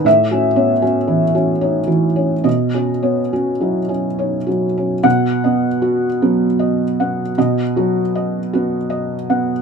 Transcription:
<<
  \new Staff \with { instrumentName = "Felt piano" } { \time 3/4 \key b \mixolydian \tempo 4 = 77 << { e''8 r2 r8 | dis''8 r2 r8 | fis''4 r2 | r2. | } \\ { \tuplet 3/2 { r8 fis'8 cis''8 fis'8 e'8 fis'8 cis''8 fis'8 cis''8 } | \tuplet 3/2 { r8 fis'8 cis''8 fis'8 e'8 fis'8 cis''8 fis'8 cis''8 } | r8 dis''8 fis'8 fis8 dis''8 fis''8 | dis''8 fis'8 dis''8 fis'8 dis''8 fis''8 | } >> }
  \new Staff \with { instrumentName = "Felt piano" } { \time 3/4 \key b \mixolydian \tuplet 3/2 { a,8 cis'8 b8 cis'8 e8 cis'8 dis'8 e8 cis'8 } | \tuplet 3/2 { b,8 cis'8 b8 cis'8 fis8 cis'8 dis'8 fis8 cis'8 } | b,8 b4 b4 b8 | b,8 fis4 b4 b8 | }
>>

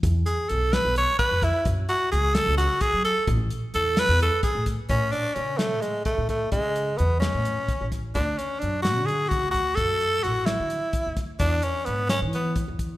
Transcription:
<<
  \new Staff \with { instrumentName = "Tenor saxophone" } { \time 7/8 \key a \major \tempo 4 = 129 r8 gis'8 a'8 b'8 cis''8 b'8 e'8 | r8 fis'8 gis'8 a'8 fis'8 gis'8 a'8 | r4 a'8 b'8 a'8 gis'8 r8 | cis'8 d'8 cis'8 a8 gis8 a8 a8 |
gis4 b8 cis'4. r8 | d'8 cis'8 d'8 fis'8 gis'8 fis'8 fis'8 | a'4 fis'8 e'4. r8 | d'8 cis'8 b8 cis'8 b8 r4 | }
  \new Staff \with { instrumentName = "Upright bass" } { \clef bass \time 7/8 \key a \major e,8 r8 b,,8. b,,8 r8 f,8 r16 | fis,8 r8 cis,8. cis,8 r8 fis8 r16 | a,,8 r8 e,8. e,8 r8 a,8 r16 | a,8 r8 cis8. a,4 a,8. |
cis4 e,8. a,8 r8 a,,8. | d,8 r8 fis,8. d4 d,8. | fis,4 a,,8. d8 r8 d,8. | e,8 r8 gis,8. e4 e,8. | }
  \new DrumStaff \with { instrumentName = "Drums" } \drummode { \time 7/8 <hh bd>8 <hh sn>8 hh8 <hh sn>8 hh8 <hh bd>8 <hh bd sn>8 | <hh bd>8 hh8 hh8 <hh sn>8 <hh sn>8 <hh bd>8 <hh sn>8 | <hh bd>8 hh8 <hh sn>8 <hh sn>8 hh8 <hh bd>8 <hh bd sn>8 | <hh bd>8 hh8 hh8 <hh sn>8 <hh sn>8 <hh bd>8 <hh bd>8 |
<hh bd>8 hh8 hh8 <hh sn>8 hh8 <hh bd>8 <hh bd sn>8 | <hh bd>8 hh8 hh8 <hh sn>8 hh8 <hh bd>8 <hh bd>8 | <hh bd>8 hh8 <hh sn>8 <hh sn>8 hh8 <hh bd>8 <hh bd sn>8 | <hh bd>8 hh8 hh8 <hh sn>8 hh8 <hh bd>8 <hh bd>8 | }
>>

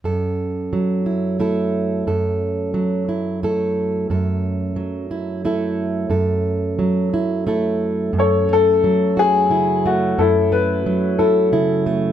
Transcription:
<<
  \new Staff \with { instrumentName = "Upright piano" } { \time 3/4 \key fis \minor \tempo 4 = 89 << { r2. | r2. | r2. | r2. |
cis''8 a'4 gis'4 fis'8 | a'8 b'4 a'4 r8 | } \\ { r2. | r2. | r2. | r2. |
a'4. r4. | e'4. r4. | } >> }
  \new Staff \with { instrumentName = "Steel-string acoustic guitar" } { \time 3/4 \key fis \minor << { a'4. e'8 <a e' a'>4 | a'4. e'8 <a e' a'>4 | a'4. e'8 <a e' a'>4 | a'4. e'8 <a e' a'>4~ |
<a e' a'>8 a4 fis'8 e'8 a8~ | a8 a4 e'8 e'8 a8 | } \\ { fis,4 fis2 | fis,4 fis2 | fis,4 fis2 | fis,4 fis2 |
fis,4 fis4 cis4 | fis,4 fis4 cis4 | } >> }
>>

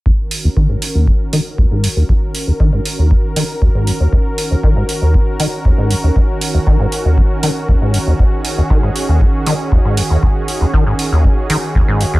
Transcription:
<<
  \new Staff \with { instrumentName = "Analog synth pad" } { \time 4/4 \key ees \minor \tempo 4 = 118 << { bes'1~ | bes'1~ | bes'1~ | bes'1 |
aes'1~ | aes'1 | } \\ { <ees des' ges'>1~ | <ees des' ges'>1~ | <ees des' ges'>1~ | <ees des' ges'>1~ |
<ees des' ges'>1~ | <ees des' ges'>1 | } >> }
  \new Staff \with { instrumentName = "Acid bass" } { \clef bass \time 4/4 \key ees \minor ees,16 r8 ees,16 ees16 aes,16 r16 ees,16 ges,16 r16 ees16 r16 ees,16 aes,16 ges,16 ees,16 | ees,16 r8 ees,16 ees16 aes,16 r16 ees,16 ges,16 r16 ees16 r16 ees,16 aes,16 ges,16 ees,16 | ees,16 r8 ees,16 ees16 aes,16 r16 ees,16 ges,16 r16 ees16 r16 ees,16 aes,16 ges,16 ees,16 | ees,16 r8 ees,16 ees16 aes,16 r16 ees,16 ges,16 r16 ees16 r16 ees,16 aes,16 ges,16 ees,16 |
ees,16 r8 ees,16 ees16 aes,16 r16 ees,16 ges,16 r16 ees16 r16 ees,16 aes,16 ges,16 ees,16 | ees,16 r8 ees,16 ees16 aes,16 r16 ees,16 ges,16 r16 ees16 r16 ees,16 aes,16 ges,16 ees,16 | }
  \new DrumStaff \with { instrumentName = "Drums" } \drummode { \time 4/4 bd8 hho8 bd8 hho8 bd8 hho8 bd8 hho8 | bd8 hho8 bd8 hho8 bd8 hho8 bd8 hho8 | bd8 hho8 bd8 hho8 bd8 hho8 bd8 hho8 | bd8 hho8 bd8 hho8 bd8 hho8 bd8 hho8 |
bd8 hho8 bd8 hho8 bd8 hho8 bd8 hho8 | bd8 hho8 bd8 hho8 bd8 hho8 bd8 hho8 | }
>>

